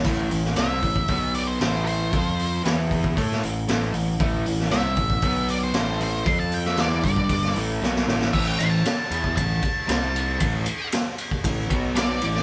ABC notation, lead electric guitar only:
X:1
M:4/4
L:1/16
Q:1/4=116
K:Am
V:1 name="Lead electric guitar"
z4 e6 d c3 c2- | c4 z12 | z4 e6 d c3 c2 | c' a g e d2 d4 z6 |
e g c' a4- a a8- | a4 z8 d4 |]